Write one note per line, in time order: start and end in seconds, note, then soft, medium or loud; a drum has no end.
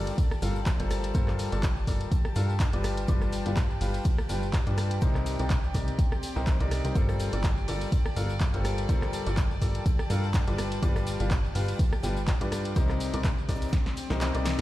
0.00 0.12 G1 medium
0.00 0.15 G3 medium
0.00 0.66 C4 medium
0.00 0.15 F4 medium
0.00 14.61 G4 medium
0.00 0.15 A4 medium
0.00 0.15 A#4 medium
0.00 0.15 D5 medium
0.00 2.84 D5 medium
0.00 5.80 A5 medium
0.07 snare soft
0.07 closed hi-hat medium
0.07 tambourine soft
0.18 kick loud
0.18 closed hi-hat medium
0.18 tambourine soft
0.18 shaker medium
0.31 cross-stick medium
0.31 tambourine soft
0.42 0.77 G1 medium
0.42 0.56 G3 medium
0.42 0.56 F4 medium
0.42 0.56 A4 medium
0.42 0.56 A#4 medium
0.42 0.56 F5 medium
0.42 open hi-hat loud
0.42 tambourine medium
0.42 shaker medium
0.56 closed hi-hat soft
0.56 tambourine soft
0.66 kick loud
0.66 snare loud
0.66 clap loud
0.66 closed hi-hat medium
0.66 tambourine soft
0.66 shaker medium
0.80 1.13 G1 loud
0.80 1.12 G3 medium
0.80 1.12 F4 medium
0.80 1.12 A4 medium
0.80 1.12 A#4 medium
0.80 1.12 C5 medium
0.80 closed hi-hat medium
0.80 tambourine soft
0.90 cross-stick medium
0.90 open hi-hat loud
0.90 tambourine medium
0.90 shaker medium
1.04 closed hi-hat medium
1.04 tambourine soft
1.14 1.50 G1 medium
1.14 1.49 G3 loud
1.14 1.49 F4 medium
1.14 1.49 A4 medium
1.14 1.49 A#4 medium
1.14 1.49 C5 loud
1.14 kick loud
1.14 closed hi-hat medium
1.14 tambourine soft
1.14 shaker medium
1.28 cross-stick medium
1.28 clap soft
1.28 tambourine soft
1.39 open hi-hat loud
1.39 tambourine medium
1.39 shaker medium
1.52 1.85 G1 medium
1.52 1.64 G3 medium
1.52 1.64 F4 medium
1.52 1.64 A4 medium
1.52 1.64 A#4 medium
1.52 1.64 D5 medium
1.52 closed hi-hat medium
1.52 tambourine soft
1.63 kick loud
1.63 snare loud
1.63 clap loud
1.63 closed hi-hat medium
1.63 tambourine soft
1.63 shaker medium
1.77 tambourine soft
1.87 2.06 G1 medium
1.87 2.08 G3 medium
1.87 2.08 F4 medium
1.87 2.08 A4 medium
1.87 2.08 A#4 medium
1.87 2.08 D5 medium
1.87 kick medium
1.87 snare soft
1.87 open hi-hat loud
1.87 tambourine medium
1.87 shaker medium
2.01 closed hi-hat medium
2.01 tambourine soft
2.12 kick loud
2.12 closed hi-hat medium
2.12 tambourine soft
2.12 shaker medium
2.25 cross-stick medium
2.25 tambourine soft
2.35 2.71 G2 medium
2.35 2.50 G3 medium
2.35 2.50 F4 medium
2.35 2.50 A4 medium
2.35 2.50 A#4 medium
2.35 2.50 F5 medium
2.35 open hi-hat loud
2.35 tambourine medium
2.35 shaker medium
2.50 tambourine soft
2.60 kick loud
2.60 snare loud
2.60 clap loud
2.60 closed hi-hat medium
2.60 tambourine soft
2.60 shaker medium
2.73 3.06 G1 loud
2.73 3.06 G3 medium
2.73 3.06 F4 medium
2.73 3.06 G4 medium
2.73 3.06 B4 medium
2.73 3.06 D5 medium
2.73 snare soft
2.73 closed hi-hat medium
2.73 tambourine soft
2.83 cross-stick medium
2.83 open hi-hat loud
2.83 tambourine medium
2.83 shaker medium
2.97 closed hi-hat medium
2.97 tambourine soft
3.08 3.43 G1 loud
3.08 3.43 G3 loud
3.08 3.43 F4 medium
3.08 3.43 G4 medium
3.08 3.43 B4 medium
3.08 3.43 D5 loud
3.08 kick loud
3.08 closed hi-hat medium
3.08 tambourine soft
3.08 shaker medium
3.21 14.61 D5 medium
3.21 cross-stick medium
3.21 closed hi-hat soft
3.21 tambourine soft
3.32 open hi-hat loud
3.32 tambourine medium
3.32 shaker medium
3.46 3.79 G1 loud
3.46 3.57 G3 medium
3.46 3.57 F4 medium
3.46 3.57 G4 medium
3.46 3.57 B4 medium
3.46 3.57 F5 medium
3.46 closed hi-hat medium
3.46 tambourine soft
3.57 kick loud
3.57 snare loud
3.57 clap loud
3.57 closed hi-hat medium
3.57 tambourine soft
3.57 shaker medium
3.70 tambourine soft
3.81 4.00 G1 medium
3.81 4.02 G3 medium
3.81 4.02 F4 medium
3.81 4.02 G4 medium
3.81 4.02 B4 medium
3.81 4.02 F5 medium
3.81 open hi-hat loud
3.81 open hi-hat medium
3.81 tambourine medium
3.94 snare soft
3.94 closed hi-hat soft
3.94 tambourine soft
4.04 kick loud
4.04 closed hi-hat medium
4.04 tambourine soft
4.04 shaker medium
4.18 cross-stick medium
4.18 tambourine soft
4.29 4.64 G1 medium
4.29 4.43 G3 medium
4.29 4.43 F4 medium
4.29 4.43 G4 medium
4.29 4.43 B4 medium
4.29 4.43 G5 medium
4.29 open hi-hat loud
4.29 tambourine medium
4.29 shaker medium
4.43 closed hi-hat soft
4.43 tambourine soft
4.53 kick loud
4.53 snare loud
4.53 clap loud
4.53 closed hi-hat medium
4.53 tambourine soft
4.53 shaker medium
4.67 5.00 G2 medium
4.67 4.99 G3 medium
4.67 4.99 F4 medium
4.67 4.99 G4 medium
4.67 4.99 B4 medium
4.67 4.99 D5 medium
4.67 closed hi-hat soft
4.67 tambourine soft
4.77 cross-stick medium
4.77 open hi-hat loud
4.77 tambourine medium
4.77 shaker medium
4.91 closed hi-hat medium
4.91 tambourine soft
5.01 5.37 C2 medium
5.01 5.36 C3 loud
5.01 7.91 C4 medium
5.01 5.36 D#4 medium
5.01 5.36 G4 medium
5.01 5.36 A#4 medium
5.01 5.36 C5 loud
5.01 kick loud
5.01 closed hi-hat medium
5.01 tambourine soft
5.01 shaker medium
5.15 cross-stick medium
5.15 clap soft
5.15 tambourine soft
5.26 open hi-hat loud
5.26 tambourine medium
5.26 shaker medium
5.39 5.72 C2 medium
5.39 5.51 C3 medium
5.39 5.51 D#4 medium
5.39 5.51 G4 medium
5.39 5.51 A#4 medium
5.39 5.51 D5 medium
5.39 closed hi-hat medium
5.39 tambourine soft
5.50 kick loud
5.50 snare loud
5.50 clap loud
5.50 closed hi-hat medium
5.50 tambourine soft
5.50 shaker medium
5.64 tambourine soft
5.74 5.93 C2 medium
5.74 5.95 C3 medium
5.74 5.95 D#4 medium
5.74 5.95 G4 medium
5.74 5.95 A#4 medium
5.74 5.95 D5 medium
5.74 kick medium
5.74 snare soft
5.74 open hi-hat loud
5.74 tambourine medium
5.74 shaker medium
5.88 closed hi-hat soft
5.88 tambourine soft
5.99 kick loud
5.99 closed hi-hat medium
5.99 tambourine soft
5.99 shaker medium
6.12 cross-stick medium
6.12 tambourine soft
6.23 open hi-hat loud
6.23 tambourine medium
6.23 shaker medium
6.36 6.58 C2 loud
6.36 6.57 C3 loud
6.36 6.57 D#4 medium
6.36 6.57 G4 medium
6.36 6.57 A#4 medium
6.36 6.57 C5 loud
6.36 tambourine soft
6.47 kick loud
6.47 snare loud
6.47 clap loud
6.47 closed hi-hat medium
6.47 tambourine soft
6.47 shaker medium
6.60 6.82 C2 medium
6.60 6.81 C3 medium
6.60 6.81 D#4 medium
6.60 6.81 G4 medium
6.60 6.81 A#4 medium
6.60 6.81 D5 loud
6.60 snare soft
6.60 closed hi-hat soft
6.60 tambourine soft
6.71 cross-stick medium
6.71 open hi-hat loud
6.71 tambourine medium
6.71 shaker medium
6.84 6.93 C2 medium
6.84 6.94 D#4 medium
6.84 6.94 G4 medium
6.84 6.94 A#4 medium
6.84 6.94 C5 medium
6.84 closed hi-hat medium
6.84 tambourine soft
6.95 7.30 G1 loud
6.95 7.30 G3 loud
6.95 7.30 F4 medium
6.95 7.30 A4 medium
6.95 7.30 A#4 medium
6.95 7.30 C5 loud
6.95 kick loud
6.95 closed hi-hat medium
6.95 tambourine soft
6.95 shaker medium
7.07 13.41 A5 medium
7.07 cross-stick medium
7.07 closed hi-hat soft
7.07 tambourine soft
7.20 open hi-hat loud
7.20 tambourine medium
7.20 shaker medium
7.33 7.66 G1 loud
7.33 7.45 G3 medium
7.33 7.45 F4 medium
7.33 7.45 A4 medium
7.33 7.45 A#4 medium
7.33 7.45 D5 medium
7.33 closed hi-hat medium
7.33 tambourine soft
7.44 kick loud
7.44 snare loud
7.44 clap loud
7.44 closed hi-hat medium
7.44 tambourine soft
7.44 shaker medium
7.58 tambourine soft
7.68 7.87 G1 medium
7.68 7.89 G3 medium
7.68 7.89 F4 medium
7.68 7.89 A4 medium
7.68 7.89 A#4 medium
7.68 7.89 D5 medium
7.68 open hi-hat loud
7.68 open hi-hat medium
7.68 tambourine medium
7.81 snare soft
7.81 closed hi-hat soft
7.81 tambourine soft
7.92 kick loud
7.92 closed hi-hat medium
7.92 tambourine soft
7.92 shaker medium
8.06 cross-stick medium
8.06 tambourine soft
8.16 8.51 G1 loud
8.16 8.30 G3 medium
8.16 8.30 F4 medium
8.16 8.30 A4 medium
8.16 8.30 A#4 medium
8.16 8.30 F5 medium
8.16 open hi-hat loud
8.16 tambourine medium
8.16 shaker medium
8.29 closed hi-hat soft
8.29 tambourine soft
8.40 kick loud
8.40 snare loud
8.40 clap loud
8.40 closed hi-hat medium
8.40 tambourine soft
8.40 shaker medium
8.54 8.87 G1 loud
8.54 8.86 G3 medium
8.54 8.86 F4 medium
8.54 8.86 A4 medium
8.54 8.86 A#4 medium
8.54 8.86 C5 medium
8.54 closed hi-hat soft
8.54 tambourine soft
8.64 cross-stick medium
8.64 open hi-hat loud
8.64 tambourine medium
8.64 shaker medium
8.78 closed hi-hat medium
8.78 tambourine soft
8.89 9.24 G1 loud
8.89 9.23 G3 loud
8.89 9.23 F4 medium
8.89 9.23 A4 medium
8.89 9.23 A#4 medium
8.89 9.23 C5 loud
8.89 kick loud
8.89 closed hi-hat medium
8.89 tambourine soft
8.89 shaker medium
9.02 cross-stick medium
9.02 clap soft
9.02 tambourine soft
9.13 open hi-hat loud
9.13 tambourine medium
9.13 shaker medium
9.26 9.59 G1 medium
9.26 9.38 G3 medium
9.26 9.38 F4 medium
9.26 9.38 A4 medium
9.26 9.38 A#4 medium
9.26 9.38 D5 medium
9.26 closed hi-hat medium
9.26 tambourine soft
9.37 kick loud
9.37 snare loud
9.37 clap loud
9.37 closed hi-hat medium
9.37 tambourine soft
9.37 shaker medium
9.51 tambourine soft
9.61 9.80 G1 medium
9.61 9.82 G3 medium
9.61 9.82 F4 medium
9.61 9.82 A4 medium
9.61 9.82 A#4 medium
9.61 9.82 D5 medium
9.61 kick medium
9.61 snare soft
9.61 open hi-hat loud
9.61 tambourine medium
9.61 shaker medium
9.75 closed hi-hat medium
9.75 tambourine soft
9.86 kick loud
9.86 closed hi-hat medium
9.86 tambourine soft
9.86 shaker medium
9.99 cross-stick medium
9.99 tambourine soft
10.10 10.45 G2 medium
10.10 10.24 G3 medium
10.10 10.24 F4 medium
10.10 10.24 A4 medium
10.10 10.24 A#4 medium
10.10 10.24 F5 medium
10.10 open hi-hat loud
10.10 tambourine medium
10.10 shaker medium
10.24 tambourine soft
10.34 kick loud
10.34 snare loud
10.34 clap loud
10.34 closed hi-hat medium
10.34 tambourine soft
10.34 shaker medium
10.47 10.80 G1 loud
10.47 10.80 G3 medium
10.47 10.80 F4 medium
10.47 10.80 G4 medium
10.47 10.80 B4 medium
10.47 10.80 D5 medium
10.47 snare soft
10.47 closed hi-hat medium
10.47 tambourine soft
10.58 cross-stick medium
10.58 open hi-hat loud
10.58 tambourine medium
10.58 shaker medium
10.72 closed hi-hat medium
10.72 tambourine soft
10.82 11.17 G1 loud
10.82 11.17 G3 loud
10.82 11.17 F4 medium
10.82 11.17 G4 medium
10.82 11.17 B4 medium
10.82 11.17 D5 loud
10.82 kick loud
10.82 closed hi-hat medium
10.82 tambourine soft
10.82 shaker medium
10.96 cross-stick medium
10.96 closed hi-hat soft
10.96 tambourine soft
11.07 open hi-hat loud
11.07 tambourine medium
11.07 shaker medium
11.20 11.53 G1 medium
11.20 11.32 G3 medium
11.20 11.32 F4 medium
11.20 11.32 G4 medium
11.20 11.32 B4 medium
11.20 11.32 F5 medium
11.20 closed hi-hat medium
11.20 tambourine soft
11.31 kick loud
11.31 snare loud
11.31 clap loud
11.31 closed hi-hat medium
11.31 tambourine soft
11.31 shaker medium
11.45 tambourine soft
11.55 11.74 G1 loud
11.55 11.76 G3 medium
11.55 11.76 F4 medium
11.55 11.76 G4 medium
11.55 11.76 B4 medium
11.55 11.76 F5 medium
11.55 open hi-hat loud
11.55 open hi-hat medium
11.55 tambourine medium
11.68 snare soft
11.68 closed hi-hat medium
11.68 tambourine soft
11.79 kick loud
11.79 closed hi-hat medium
11.79 tambourine soft
11.79 shaker medium
11.93 cross-stick medium
11.93 tambourine soft
12.03 12.38 G1 loud
12.03 12.17 G3 medium
12.03 12.17 F4 medium
12.03 12.17 G4 medium
12.03 12.17 B4 medium
12.03 12.17 G5 medium
12.03 snare loud
12.03 open hi-hat loud
12.03 tambourine medium
12.03 shaker medium
12.17 closed hi-hat soft
12.17 tambourine soft
12.27 kick loud
12.27 snare loud
12.27 clap loud
12.27 closed hi-hat medium
12.27 tambourine soft
12.27 shaker medium
12.41 12.74 G2 loud
12.41 12.73 G3 medium
12.41 12.73 F4 medium
12.41 12.73 G4 medium
12.41 12.73 B4 medium
12.41 12.73 D5 medium
12.41 closed hi-hat medium
12.41 tambourine soft
12.52 cross-stick medium
12.52 open hi-hat loud
12.52 tambourine medium
12.52 shaker medium
12.65 closed hi-hat medium
12.65 tambourine soft
12.76 13.11 C2 loud
12.76 13.10 C3 loud
12.76 14.61 C4 medium
12.76 13.10 D#4 medium
12.76 13.10 G4 medium
12.76 13.10 A#4 medium
12.76 13.10 C5 loud
12.76 kick loud
12.76 closed hi-hat medium
12.76 tambourine soft
12.76 shaker medium
12.89 cross-stick medium
12.89 clap soft
12.89 tambourine soft
13.00 open hi-hat loud
13.00 tambourine medium
13.00 shaker medium
13.14 13.46 C2 loud
13.14 13.25 C3 medium
13.14 13.25 D#4 medium
13.14 13.25 G4 medium
13.14 13.25 A#4 medium
13.14 13.25 D5 medium
13.14 closed hi-hat medium
13.14 tambourine soft
13.24 kick loud
13.24 snare loud
13.24 clap loud
13.24 closed hi-hat medium
13.24 tambourine soft
13.24 shaker medium
13.38 tambourine soft
13.49 13.67 C2 medium
13.49 13.69 C3 medium
13.49 13.69 D#4 medium
13.49 13.69 G4 medium
13.49 13.69 A#4 medium
13.49 13.69 D5 medium
13.49 kick medium
13.49 snare medium
13.49 open hi-hat loud
13.49 tambourine medium
13.49 shaker medium
13.55 snare medium
13.55 shaker medium
13.62 snare medium
13.62 closed hi-hat medium
13.62 tambourine soft
13.62 shaker medium
13.67 snare medium
13.67 shaker medium
13.73 kick loud
13.73 snare medium
13.73 closed hi-hat medium
13.73 tambourine soft
13.73 shaker medium
13.86 snare medium
13.86 tambourine soft
13.97 open hi-hat loud
13.97 tambourine medium
13.97 shaker medium
14.10 14.32 C2 loud
14.10 14.31 C3 loud
14.10 14.31 D#4 medium
14.10 14.31 G4 medium
14.10 14.31 A#4 medium
14.10 14.31 C5 loud
14.10 snare medium
14.10 closed hi-hat soft
14.10 tambourine soft
14.21 snare medium
14.21 clap loud
14.21 closed hi-hat medium
14.21 tambourine soft
14.21 shaker medium
14.34 14.56 C2 medium
14.34 14.56 C3 medium
14.34 14.56 D#4 medium
14.34 14.56 G4 medium
14.34 14.56 A#4 medium
14.34 14.56 D5 loud
14.34 closed hi-hat medium
14.34 tambourine soft
14.45 snare loud
14.45 open hi-hat loud
14.45 tambourine medium
14.45 shaker medium